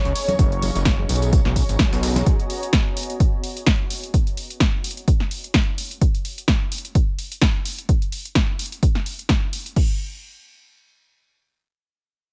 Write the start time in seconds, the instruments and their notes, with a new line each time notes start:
Already playing: analog synth pad C#5 C#6
0.05 analog synth bass C#2, closed hi-hat
0.15 ambient pad F#4, open hi-hat, tambourine
0.28 closed hi-hat, tambourine, high conga
0.39 analog synth bass F#1, kick, closed hi-hat, tambourine
0.52 closed hi-hat
0.58 ambient pad C#5
0.62 open hi-hat, tambourine, high conga
0.75 analog synth bass F#1, snare, closed hi-hat, tambourine
0.85 kick, snare, closed hi-hat, tambourine
0.99 high conga
1.09 analog synth bass B1, open hi-hat, tambourine
1.16 closed hi-hat
1.22 closed hi-hat, tambourine
1.33 kick, closed hi-hat, tambourine
1.45 analog synth bass B1, snare, high conga
1.56 kick, open hi-hat, tambourine
1.69 analog synth bass G#1, closed hi-hat, tambourine
1.79 kick, snare, closed hi-hat, tambourine, high conga
1.93 analog synth bass B1, snare, tambourine
2.03 snare, open hi-hat, tambourine
2.16 snare, closed hi-hat, tambourine, high conga
2.26 kick, closed hi-hat
2.40 closed hi-hat
2.50 open hi-hat
2.63 closed hi-hat
2.73 kick, snare, closed hi-hat
2.97 open hi-hat
3.03 closed hi-hat
3.10 closed hi-hat
3.20 kick, closed hi-hat
3.44 open hi-hat
3.57 closed hi-hat
3.66 kick, snare, closed hi-hat
3.90 open hi-hat
4.04 closed hi-hat
4.14 kick, closed hi-hat
4.27 closed hi-hat
4.37 open hi-hat
4.50 closed hi-hat
4.60 kick, snare, closed hi-hat
4.84 open hi-hat
4.91 closed hi-hat
4.97 closed hi-hat
5.08 kick, closed hi-hat
5.20 snare
5.31 open hi-hat
5.44 closed hi-hat
5.54 kick, snare, closed hi-hat
5.78 open hi-hat
5.91 closed hi-hat
6.01 kick, closed hi-hat
6.15 closed hi-hat
6.25 open hi-hat
6.38 closed hi-hat
6.48 kick, snare, closed hi-hat
6.72 open hi-hat
6.78 closed hi-hat
6.85 closed hi-hat
6.95 kick, closed hi-hat
7.19 open hi-hat
7.32 closed hi-hat
7.41 kick, snare, closed hi-hat
7.65 open hi-hat
7.79 closed hi-hat
7.89 kick, closed hi-hat
8.02 closed hi-hat
8.12 open hi-hat
8.25 closed hi-hat
8.35 kick, snare, closed hi-hat
8.59 open hi-hat
8.66 closed hi-hat
8.72 closed hi-hat
8.83 kick, closed hi-hat
8.95 snare
9.06 open hi-hat
9.19 closed hi-hat
9.29 kick, snare, closed hi-hat
9.53 open hi-hat
9.66 closed hi-hat
9.76 kick, crash